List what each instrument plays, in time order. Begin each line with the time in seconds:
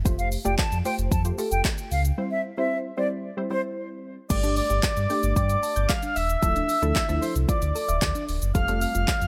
0.05 sub bass F1, synth stab A3 F4 G4 C5, kick, closed hi-hat, shaker
0.18 flute F5, closed hi-hat, shaker
0.32 open hi-hat, shaker
0.45 sub bass F1, synth stab A3 F4 G4 D5, flute G5, closed hi-hat, shaker
0.58 sub bass F2, flute A5, kick, snare, clap, closed hi-hat, shaker
0.72 sub bass F2, closed hi-hat, shaker
0.85 synth stab A3 F4 G4 C5, flute G5, open hi-hat, shaker
0.98 sub bass F1, closed hi-hat, shaker
1.11 sub bass F2, flute A5, kick, closed hi-hat, shaker
1.25 synth stab A3 F4 G4 C5, closed hi-hat, shaker
1.38 synth stab A3 F4 G4 A4, open hi-hat, shaker
1.51 sub bass F1, flute G5, closed hi-hat, shaker
1.65 kick, snare, clap, closed hi-hat, shaker
1.78 closed hi-hat, shaker
1.91 sub bass C#2, flute F5, open hi-hat, shaker
2.05 closed hi-hat, shaker
2.18 synth stab G3 C4 E4 C5
2.31 flute E5
2.57 synth stab G3 C4 E4 C5, flute E5
2.97 synth stab G3 C4 E4 C5, flute D5
3.37 synth stab G3 C4 E4 C5
3.50 synth stab G3 C4 E4 C5, flute C5
4.30 sub bass G1, synth arpeggio sound G3, synth stab A3 D4 G4, accordion D5, kick, closed hi-hat, crash, shaker
4.43 synth stab A3 D4 G4, synth arpeggio sound D4, closed hi-hat, shaker
4.56 accordion D5, open hi-hat, shaker
4.70 sub bass G1, synth arpeggio sound G4, closed hi-hat, shaker
4.83 sub bass G2, kick, snare, clap, closed hi-hat, shaker
4.97 sub bass G2, closed hi-hat, shaker
5.10 synth stab A3 D4 G4, synth arpeggio sound G4, open hi-hat, shaker
5.23 sub bass G1, closed hi-hat, shaker
5.36 sub bass G2, accordion D5, synth arpeggio sound G5, kick, closed hi-hat, shaker
5.49 synth arpeggio sound D6, closed hi-hat, shaker
5.63 synth arpeggio sound A5, open hi-hat, shaker
5.76 sub bass G1, synth arpeggio sound G6, closed hi-hat, shaker
5.89 synth arpeggio sound G3, accordion F5, kick, snare, clap, closed hi-hat, shaker
6.03 synth arpeggio sound D4, closed hi-hat, shaker
6.16 sub bass D#1, accordion E5, open hi-hat, shaker
6.30 closed hi-hat, shaker
6.42 sub bass D1, synth stab F3 A3 D4 E4 A4, synth arpeggio sound F3, kick, closed hi-hat, shaker
6.56 synth arpeggio sound D4, closed hi-hat, shaker
6.69 open hi-hat, shaker
6.82 sub bass D2, synth stab F3 A3 D4 E4 A4, synth arpeggio sound E4, closed hi-hat, shaker
6.96 sub bass D2, kick, snare, clap, closed hi-hat, shaker
7.08 sub bass D2, synth stab F3 A3 D4 E4 A4, closed hi-hat, shaker
7.22 synth arpeggio sound E4, accordion C5, open hi-hat, shaker
7.36 sub bass C2, closed hi-hat, shaker
7.49 sub bass D2, synth arpeggio sound F4, accordion D5, kick, closed hi-hat, shaker
7.62 sub bass D2, synth arpeggio sound D5, closed hi-hat, shaker
7.75 synth arpeggio sound A4, open hi-hat, shaker
7.88 sub bass D1, synth arpeggio sound E5, closed hi-hat, shaker
8.02 sub bass D2, synth arpeggio sound F3, kick, snare, clap, closed hi-hat, shaker
8.15 synth arpeggio sound D4, closed hi-hat, shaker
8.29 sub bass D1, open hi-hat, shaker
8.42 sub bass F#1, closed hi-hat, shaker
8.55 sub bass F1, synth stab G3 A3 C4 F4 A4, synth arpeggio sound G3, accordion F5, kick, closed hi-hat, shaker
8.68 synth stab G3 A3 C4 F4 A4, synth arpeggio sound C4, closed hi-hat, shaker
8.81 accordion F5, open hi-hat, shaker
8.95 sub bass F1, synth arpeggio sound F4, closed hi-hat, shaker
9.08 sub bass F2, kick, snare, clap, closed hi-hat, shaker
9.21 sub bass F2, closed hi-hat, shaker